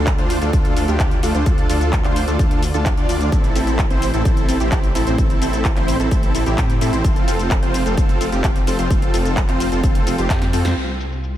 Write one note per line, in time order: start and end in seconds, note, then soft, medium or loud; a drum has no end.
0.00 0.16 D2 loud
0.07 kick loud
0.07 clap loud
0.07 closed hi-hat medium
0.07 shaker soft
0.18 0.39 D2 loud
0.18 0.38 D4 loud
0.18 0.38 F4 medium
0.18 0.38 C5 loud
0.18 closed hi-hat soft
0.18 shaker soft
0.30 open hi-hat loud
0.30 shaker medium
0.42 0.51 D2 loud
0.42 0.51 D4 medium
0.42 0.51 F4 medium
0.42 0.51 A4 medium
0.42 closed hi-hat soft
0.42 shaker soft
0.53 0.74 D2 loud
0.53 0.74 D4 loud
0.53 0.74 F4 medium
0.53 0.74 A4 loud
0.53 kick loud
0.53 closed hi-hat medium
0.53 shaker soft
0.65 closed hi-hat soft
0.65 shaker soft
0.77 0.86 D2 loud
0.77 0.85 D4 medium
0.77 0.85 F4 medium
0.77 0.85 A4 medium
0.77 open hi-hat loud
0.77 shaker medium
0.88 0.97 D2 loud
0.88 0.97 D4 medium
0.88 0.97 F4 medium
0.88 0.97 G4 medium
0.88 closed hi-hat soft
0.88 shaker soft
1.00 1.21 D2 loud
1.00 1.15 D4 loud
1.00 1.15 F4 medium
1.00 1.15 G4 loud
1.00 kick loud
1.00 clap loud
1.00 closed hi-hat medium
1.00 shaker soft
1.11 closed hi-hat soft
1.11 shaker soft
1.23 1.32 D2 loud
1.23 1.33 D4 medium
1.23 1.33 F4 medium
1.23 1.33 A4 medium
1.23 open hi-hat loud
1.23 shaker medium
1.35 1.44 D2 loud
1.35 1.45 D4 medium
1.35 1.45 F4 medium
1.35 1.45 C5 medium
1.35 closed hi-hat soft
1.35 shaker soft
1.46 1.67 D2 medium
1.46 1.67 D4 medium
1.46 1.67 F4 medium
1.46 1.67 A4 medium
1.46 kick loud
1.46 closed hi-hat medium
1.46 shaker soft
1.58 closed hi-hat soft
1.58 shaker soft
1.70 2.02 D2 loud
1.70 1.94 D4 medium
1.70 1.94 F4 medium
1.70 1.94 A4 medium
1.70 open hi-hat loud
1.70 shaker medium
1.81 closed hi-hat soft
1.81 shaker soft
1.93 kick loud
1.93 clap loud
1.93 closed hi-hat medium
1.93 shaker soft
2.04 2.25 D2 loud
2.04 2.24 D4 loud
2.04 2.24 F4 medium
2.04 2.24 C5 loud
2.04 clap soft
2.04 closed hi-hat soft
2.04 shaker soft
2.16 open hi-hat loud
2.16 shaker medium
2.28 2.37 D2 loud
2.28 2.37 D4 medium
2.28 2.37 F4 medium
2.28 2.37 A4 medium
2.28 closed hi-hat soft
2.28 shaker soft
2.39 2.72 D2 loud
2.39 2.60 D4 loud
2.39 2.60 F4 medium
2.39 2.60 A4 loud
2.39 kick loud
2.39 closed hi-hat medium
2.39 shaker soft
2.51 closed hi-hat soft
2.51 shaker soft
2.63 open hi-hat loud
2.63 shaker medium
2.74 2.95 D2 loud
2.74 2.89 D4 medium
2.74 2.89 F4 medium
2.74 2.89 A4 medium
2.74 closed hi-hat soft
2.74 shaker soft
2.86 kick loud
2.86 clap loud
2.86 closed hi-hat medium
2.86 shaker soft
2.97 3.07 D2 loud
2.97 3.07 D4 medium
2.97 3.07 F4 medium
2.97 3.07 D5 medium
2.97 closed hi-hat soft
2.97 shaker soft
3.09 3.30 D2 loud
3.09 3.30 D4 medium
3.09 3.30 F4 medium
3.09 3.30 D5 loud
3.09 open hi-hat loud
3.09 shaker medium
3.21 closed hi-hat soft
3.21 shaker soft
3.32 3.53 A1 medium
3.32 3.53 C4 medium
3.32 3.53 E4 medium
3.32 3.53 A4 medium
3.32 kick loud
3.32 closed hi-hat medium
3.32 shaker soft
3.44 closed hi-hat soft
3.44 shaker soft
3.56 3.88 A1 loud
3.56 3.80 C4 medium
3.56 3.80 E4 medium
3.56 3.80 A4 medium
3.56 open hi-hat loud
3.56 shaker medium
3.67 closed hi-hat soft
3.67 shaker soft
3.79 kick loud
3.79 clap loud
3.79 closed hi-hat medium
3.79 shaker soft
3.90 4.11 A1 loud
3.90 4.10 C4 loud
3.90 4.10 E4 medium
3.90 4.10 C5 loud
3.90 closed hi-hat soft
3.90 shaker soft
4.02 open hi-hat loud
4.02 shaker medium
4.14 4.23 A1 loud
4.14 4.23 C4 medium
4.14 4.23 E4 medium
4.14 4.23 A4 medium
4.14 closed hi-hat soft
4.14 shaker soft
4.25 4.46 A1 loud
4.25 4.46 E4 medium
4.25 4.46 A4 loud
4.25 kick loud
4.25 closed hi-hat medium
4.25 shaker soft
4.37 closed hi-hat soft
4.37 shaker soft
4.49 4.58 A1 loud
4.49 4.58 C4 medium
4.49 4.58 E4 medium
4.49 4.58 A4 medium
4.49 open hi-hat loud
4.49 shaker medium
4.60 4.70 A1 loud
4.60 4.69 C4 medium
4.60 4.69 E4 medium
4.60 4.69 G4 medium
4.60 closed hi-hat soft
4.60 shaker soft
4.72 4.93 A1 medium
4.72 4.87 C4 loud
4.72 4.87 G4 loud
4.72 kick loud
4.72 clap loud
4.72 closed hi-hat medium
4.72 shaker soft
4.84 closed hi-hat soft
4.84 shaker soft
4.95 5.04 A1 loud
4.95 5.05 C4 medium
4.95 5.05 E4 medium
4.95 5.05 A4 medium
4.95 open hi-hat loud
4.95 shaker medium
5.07 5.16 A1 loud
5.07 5.17 C4 medium
5.07 5.17 E4 medium
5.07 5.17 C5 loud
5.07 closed hi-hat soft
5.07 shaker soft
5.18 5.39 A1 loud
5.18 5.39 C4 medium
5.18 5.39 E4 medium
5.18 5.39 A4 medium
5.18 kick loud
5.18 closed hi-hat medium
5.18 shaker soft
5.30 closed hi-hat soft
5.30 shaker soft
5.42 5.74 A1 loud
5.42 5.66 C4 medium
5.42 5.66 E4 medium
5.42 5.66 A4 medium
5.42 open hi-hat loud
5.42 shaker medium
5.53 closed hi-hat soft
5.53 shaker soft
5.65 kick loud
5.65 clap loud
5.65 closed hi-hat medium
5.65 shaker soft
5.76 5.98 A1 loud
5.76 5.96 C4 loud
5.76 5.96 E4 medium
5.76 5.96 C5 loud
5.76 clap soft
5.76 closed hi-hat soft
5.76 shaker soft
5.88 open hi-hat loud
5.88 shaker medium
6.00 6.09 A1 loud
6.00 6.09 C4 medium
6.00 6.09 E4 medium
6.00 6.09 A4 medium
6.00 closed hi-hat soft
6.00 shaker soft
6.11 6.32 A1 loud
6.11 6.32 C4 loud
6.11 6.32 E4 medium
6.11 6.32 A4 loud
6.11 kick loud
6.11 closed hi-hat medium
6.11 shaker soft
6.23 closed hi-hat soft
6.23 shaker soft
6.35 6.44 A1 loud
6.35 6.44 C4 medium
6.35 6.43 E4 medium
6.35 6.44 A4 medium
6.35 open hi-hat loud
6.35 shaker medium
6.46 6.56 A1 loud
6.46 6.55 C4 medium
6.46 6.55 E4 medium
6.46 6.55 G4 loud
6.46 closed hi-hat soft
6.46 shaker soft
6.58 6.79 A2 loud
6.58 6.73 C4 loud
6.58 kick loud
6.58 clap loud
6.58 closed hi-hat medium
6.58 shaker soft
6.70 closed hi-hat soft
6.70 shaker soft
6.81 6.91 A2 loud
6.81 6.91 C4 medium
6.81 6.91 E4 medium
6.81 6.91 A4 medium
6.81 open hi-hat loud
6.81 shaker medium
6.93 7.02 A1 loud
6.93 7.03 C4 medium
6.93 7.03 E4 medium
6.93 7.03 C5 loud
6.93 closed hi-hat soft
6.93 shaker soft
7.04 7.25 F1 loud
7.04 7.25 C4 medium
7.04 7.25 F4 medium
7.04 7.25 A4 medium
7.04 kick loud
7.04 closed hi-hat medium
7.04 shaker soft
7.16 closed hi-hat soft
7.16 shaker soft
7.28 7.60 F1 medium
7.28 7.52 C4 medium
7.28 7.52 F4 medium
7.28 7.52 A4 medium
7.28 open hi-hat loud
7.28 shaker medium
7.39 closed hi-hat soft
7.39 shaker soft
7.51 kick loud
7.51 clap loud
7.51 closed hi-hat medium
7.51 shaker soft
7.63 7.84 F1 loud
7.63 7.82 C4 loud
7.63 7.82 F4 medium
7.63 7.82 C5 loud
7.63 closed hi-hat soft
7.63 shaker soft
7.74 open hi-hat loud
7.74 shaker medium
7.86 7.95 F1 loud
7.86 7.95 C4 medium
7.86 7.95 F4 medium
7.86 7.95 A4 medium
7.86 closed hi-hat soft
7.86 shaker soft
7.97 8.18 F1 loud
7.97 8.18 F4 medium
7.97 kick loud
7.97 closed hi-hat medium
7.97 shaker soft
8.09 closed hi-hat soft
8.09 shaker soft
8.21 8.30 F1 loud
8.21 8.30 C4 medium
8.21 8.30 F4 medium
8.21 8.30 A4 medium
8.21 open hi-hat loud
8.21 shaker medium
8.32 8.42 F1 loud
8.32 8.41 C4 medium
8.32 8.41 F4 medium
8.32 8.41 G4 medium
8.32 closed hi-hat soft
8.32 shaker soft
8.44 8.65 F1 medium
8.44 kick loud
8.44 clap loud
8.44 closed hi-hat medium
8.44 shaker soft
8.56 closed hi-hat soft
8.56 shaker soft
8.67 8.77 F1 loud
8.67 8.77 C4 medium
8.67 8.77 F4 medium
8.67 8.77 A4 medium
8.67 open hi-hat loud
8.67 shaker medium
8.79 8.88 F1 loud
8.79 8.89 C4 medium
8.79 8.89 F4 medium
8.79 8.89 C5 medium
8.79 closed hi-hat soft
8.79 shaker soft
8.91 9.11 F1 loud
8.91 9.11 C4 medium
8.91 9.11 F4 medium
8.91 9.11 A4 medium
8.91 kick loud
8.91 closed hi-hat medium
8.91 shaker soft
9.02 closed hi-hat soft
9.02 shaker soft
9.14 9.46 F1 loud
9.14 9.38 C4 medium
9.14 9.38 F4 medium
9.14 9.38 A4 loud
9.14 open hi-hat loud
9.14 shaker medium
9.25 closed hi-hat soft
9.25 shaker soft
9.37 kick loud
9.37 clap loud
9.37 closed hi-hat medium
9.37 shaker soft
9.49 9.70 F1 loud
9.49 9.68 C4 loud
9.49 9.68 F4 medium
9.49 9.68 C5 loud
9.49 clap soft
9.49 closed hi-hat soft
9.49 shaker soft
9.60 open hi-hat loud
9.60 shaker medium
9.72 9.81 F1 loud
9.72 9.81 C4 medium
9.72 9.81 F4 medium
9.72 9.81 A4 medium
9.72 closed hi-hat soft
9.72 shaker soft
9.84 10.04 F1 medium
9.84 10.04 C4 loud
9.84 10.04 A4 loud
9.84 kick loud
9.84 closed hi-hat medium
9.84 shaker soft
9.95 closed hi-hat soft
9.95 shaker soft
10.07 10.16 F1 loud
10.07 10.16 C4 medium
10.07 10.16 F4 medium
10.07 10.16 A4 medium
10.07 open hi-hat loud
10.07 shaker medium
10.18 10.28 F1 loud
10.18 10.27 C4 medium
10.18 10.27 F4 medium
10.18 10.27 G4 medium
10.18 closed hi-hat soft
10.18 shaker soft
10.30 10.51 F2 loud
10.30 10.45 C4 loud
10.30 10.45 F4 medium
10.30 10.45 G4 loud
10.30 kick loud
10.30 snare medium
10.30 clap loud
10.30 closed hi-hat medium
10.30 shaker soft
10.42 snare medium
10.42 closed hi-hat soft
10.42 shaker soft
10.53 10.63 F2 loud
10.53 10.63 C4 medium
10.53 10.63 F4 medium
10.53 10.63 A4 medium
10.53 open hi-hat loud
10.53 shaker medium
10.65 10.74 F2 loud
10.65 10.75 C4 medium
10.65 10.75 F4 medium
10.65 10.75 C5 medium
10.65 snare medium
10.65 closed hi-hat soft
10.65 shaker soft
10.77 11.38 C2 medium
10.77 crash medium
10.77 shaker soft
10.89 shaker soft
11.00 shaker medium
11.12 shaker soft
11.24 shaker soft